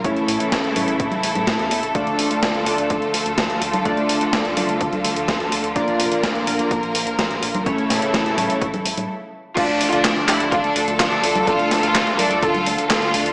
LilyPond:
<<
  \new Staff \with { instrumentName = "Violin section" } { \time 4/4 \key d \minor \tempo 4 = 126 r1 | r1 | r1 | r1 |
r1 | <d' f'>8 r16 <d' f'>8 r16 <e' g'>8 <d' f'>8. r16 <d' f'>8. r16 | <f' a'>8 r16 <f' a'>8 r16 <d' bes'>8 <f' a'>8. r16 <f' a'>8. r16 | }
  \new Staff \with { instrumentName = "Analog polysynth" } { \time 4/4 \key d \minor <a cis' e' cis''>8. <a cis' e' cis''>8. <a cis' e' cis''>8 r2 | <a d' f' d''>8. <a d' f' d''>8. <a d' f' d''>8 r2 | <a d' f' d''>8. <a d' f' d''>8. <a d' f' d''>8 r2 | <bes d' f' d''>8. <bes d' f' d''>8. <bes d' f' d''>8 r2 |
<a cis' e' cis''>8. <a cis' e' cis''>8. <a cis' e' cis''>8 r2 | <a d' f' d''>8. <a d' f' d''>8. <a d' f' d''>8 r4. <a d' f' d''>8 | <a d' f' d''>8. <a d' f' d''>8. <a d' f' d''>8 r4. <a d' f' d''>8 | }
  \new Staff \with { instrumentName = "String section" } { \time 4/4 \key d \minor << { <a a'>1~ | <a a'>1~ | <a a'>1 | <bes bes'>1 |
<a a'>2. r4 | <a a'>1~ | <a a'>1 | } \\ { <cis e e'>1 | <d f f'>1~ | <d f f'>1~ | <d f f'>1 |
<cis e e'>2. r4 | <d f f'>1~ | <d f f'>1 | } >> }
  \new Staff \with { instrumentName = "Analog synth bass" } { \clef bass \time 4/4 \key d \minor a,,16 a,,16 a,16 a,,16 a,,16 a,,16 a,16 a,,16 a,16 a,,16 a,,16 a,16 a,16 e,16 e,16 a,,16 | d,16 d,16 a,,16 d,16 d,16 d,16 d,16 d,16 d,16 d,16 d,16 d,16 d,16 d,16 d,16 d,16 | d,16 d,16 d,,16 d,16 d,16 d,16 d,,16 d,16 d,16 d,16 d,16 d,16 d,16 d,16 d,16 d,16 | bes,,16 bes,,16 f,,16 bes,,16 bes,,16 bes,,16 bes,,16 bes,,16 bes,,16 bes,,16 bes,,16 bes,,16 bes,,16 bes,,16 bes,,16 bes,,16 |
a,,16 a,,16 a,16 a,,16 a,,16 a,,16 a,16 a,,16 a,,16 a,,16 a,,16 a,16 r4 | d,16 d,16 a,,16 d,16 d,16 d,16 d,16 d,16 d,16 d,16 d,16 d,16 d,16 d,16 d,16 d,16 | d,16 d,16 d,,16 d,16 d,16 d,16 d,,16 d,16 d,16 d,16 d,16 d,16 d,16 d,16 d,16 d,16 | }
  \new DrumStaff \with { instrumentName = "Drums" } \drummode { \time 4/4 <hh bd>16 hh16 hho16 hh16 <hh bd sn>16 hh16 <cgho hho>16 hh16 <hh bd>16 <cgho hh>16 hho16 <cgho hh>16 <hh bd sn>16 hh16 hho16 hh16 | <hh bd>16 hh16 hho16 hh16 <hh bd sn>16 hh16 hho16 hh16 <hh bd>16 hh16 hho16 hh16 <hh bd sn>16 hh16 hho16 <cgho hh>16 | <hh bd>16 hh16 hho16 hh16 <hh bd sn>16 hh16 <cgho hho>16 hh16 <hh bd>16 <cgho hh>16 hho16 hh16 <hh bd sn>16 hh16 hho16 hh16 | <hh bd>16 hh16 hho16 hh16 <hh bd sn>16 hh16 hho16 hh16 <hh bd>16 hh16 hho16 hh16 <hh bd sn>16 hh16 hho16 <cgho hh>16 |
<hh bd>16 hh16 <hho sn>16 hh16 <hh bd sn>16 hh16 <cgho hho>16 hh16 <hh bd>16 <cgho hh>16 hho16 <cgho hh>16 r4 | <cymc hh bd>16 hh16 hho16 hh16 <hc hh bd sn>16 hh16 <hc hho>16 hh16 <hh bd>16 hh16 hho16 hh16 <hc hh bd sn>16 hh16 hho16 <cgho hh>16 | <hh bd>16 hh16 <hho sn>16 hh16 <hc hh bd sn>16 hh16 <cgho hho>16 hh16 <hh bd>16 <cgho hh>16 hho16 hh16 <hc hh bd sn>16 hh16 hho16 hh16 | }
>>